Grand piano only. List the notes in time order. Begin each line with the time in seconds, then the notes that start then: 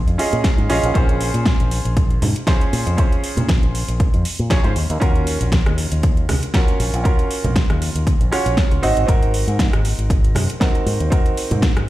Already playing: C#4 F4 G#4 C5
0.18 C#4 F4 G#4 D#5
0.69 C#4 F4 G#4 D#5
0.94 C#4 F4 G#4 C5
2.47 C#4 F4 G#4 C5
2.97 C#4 F4 G#4 C5
4.50 C#4 F4 G#4 C#5
4.63 C#4 F4 G#4 C5
5.00 C#4 F4 F#4 A#4
6.54 C#4 F4 F#4 A#4
7.04 C#4 F4 F#4 A#4
8.32 C#4 F4 F#4 C#5
8.82 C4 D#4 F#4 D#5
9.07 C4 D#4 F#4 A#4
10.60 C4 D#4 F#4 A#4
11.10 C4 D#4 F#4 A#4